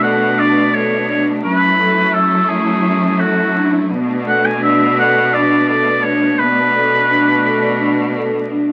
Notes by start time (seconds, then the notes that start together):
Already playing: B2 A3 B3 D4
0.02 A4 F#5
0.38 D4 D5
0.73 A4 C#5
1.09 D4 C#5
1.43 F#2 F#3 A3 C#4 E4 B4
1.79 A4
2.14 C#4 A4
2.49 A3 G#4
2.85 C#4
3.19 F#4 A4
3.56 D4
3.90 B2 A3 B3 D4
4.27 A4 F#5
4.45 G#5
4.62 D4 E5
4.97 A4 F#5
5.33 D4 D5
5.68 A4 D5
6.03 D4 C#5
6.39 B2 B3 D4 B4
6.74 A4
7.10 D4
7.45 A4
7.80 D4
8.16 A4
8.51 D4